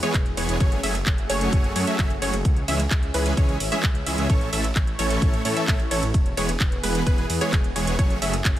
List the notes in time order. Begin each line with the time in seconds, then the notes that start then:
Already playing: E3 B3 G#4
0.03 E3 G#3 B3 G#4 C#5, closed hi-hat
0.14 E1, kick, clap, closed hi-hat
0.26 closed hi-hat
0.37 E1 E3 G#3 B3 G#4 C#5, open hi-hat, ride
0.49 E1, closed hi-hat
0.60 F#1 F#3 A3 C#4 F#4 G#4 C#5, kick, closed hi-hat
0.72 closed hi-hat
0.83 F#1 F#3 A3 C#4 G#4 E5, open hi-hat, ride
0.95 closed hi-hat
1.06 F#1, kick, clap, closed hi-hat
1.18 closed hi-hat
1.30 F#1 F#3 A3 C#4 G#4 C#5, open hi-hat, ride
1.41 closed hi-hat
1.53 F#1, kick, closed hi-hat
1.64 closed hi-hat
1.76 F#2 F#3 A3 C#4 G#4 C#5, open hi-hat, ride
1.87 F#3 A3 C#4 G#4 E5, closed hi-hat
1.99 F#1 F#3 A3 C#4 G#4 E5, kick, clap, closed hi-hat
2.10 closed hi-hat
2.22 F#1 F#3 A3 C#4 G#4 C#5, open hi-hat, ride
2.33 F#1, closed hi-hat
2.45 C#2 C#4 E5, kick, closed hi-hat
2.57 closed hi-hat
2.68 C#2 E3 G#3 C#4 G#4 E5, open hi-hat, ride
2.80 closed hi-hat
2.91 C#2, kick, clap, closed hi-hat
3.03 closed hi-hat
3.14 C#2 E3 G#3 C#4 G#4 B4, open hi-hat, ride
3.26 closed hi-hat
3.37 C#2 E3 G#3 C#4 G#4 C#5, kick, closed hi-hat
3.49 closed hi-hat
3.60 G#1, open hi-hat, ride
3.72 E3 G#3 C#4 G#4 E5, closed hi-hat
3.83 C#2, kick, clap, closed hi-hat
3.95 closed hi-hat
4.06 C#2 E3 G#3 C#4 G#4 E5, open hi-hat, ride
4.18 C#2, closed hi-hat
4.30 A1 E3 A3 C#4 E4 A4 C#5, kick, closed hi-hat
4.41 closed hi-hat
4.53 A1 E3 A3 C#4 A4 E5, open hi-hat, ride
4.64 closed hi-hat
4.76 A1, kick, clap, closed hi-hat
4.87 closed hi-hat
4.99 A1 E3 A3 C#4 A4 C#5, open hi-hat, ride
5.10 closed hi-hat
5.22 A1, kick, closed hi-hat
5.34 closed hi-hat
5.45 A2 E3 A3 C#4 A4 C#5, open hi-hat, ride
5.57 E3 A3 C#4 A4 E5, closed hi-hat
5.68 A1 E3 A3 C#4 A4 E5, kick, clap, closed hi-hat
5.80 closed hi-hat
5.91 A1 E3 A3 C#4 A4 C#5, open hi-hat, ride
6.03 A1, closed hi-hat
6.14 E1 E3 B3 G#4, kick, closed hi-hat
6.26 closed hi-hat
6.37 E1 E3 G#3 B3 G#4 C#5, open hi-hat, ride
6.49 closed hi-hat
6.60 E1, kick, clap, closed hi-hat
6.72 closed hi-hat
6.83 E1 E3 G#3 B3 G#4 B4, open hi-hat, ride
6.95 closed hi-hat
7.06 E1 E3 G#3 B3 G#4 B4, kick, closed hi-hat
7.18 closed hi-hat
7.30 E2, open hi-hat, ride
7.41 E3 G#3 B3 G#4 C#5, closed hi-hat
7.53 E1, kick, clap, closed hi-hat
7.64 closed hi-hat
7.76 E1 E3 G#3 B3 G#4 C#5, open hi-hat, ride
7.87 E1, closed hi-hat
7.99 F#1 F#3 A3 C#4 F#4 G#4 C#5, kick, closed hi-hat
8.10 closed hi-hat
8.22 F#1 F#3 A3 C#4 G#4 E5, open hi-hat, ride
8.33 closed hi-hat
8.45 F#1, kick, clap, closed hi-hat
8.57 closed hi-hat